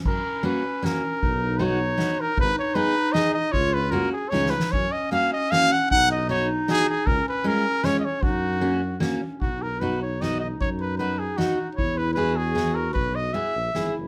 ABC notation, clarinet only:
X:1
M:3/4
L:1/8
Q:"Swing" 1/4=153
K:F#
V:1 name="Clarinet"
C6 | D6 | D6 | E3 z D2 |
C6 | D6 | C6 | D3 z C2 |
[K:B] D6- | D6 | E2 F4- | F3 z E2 |]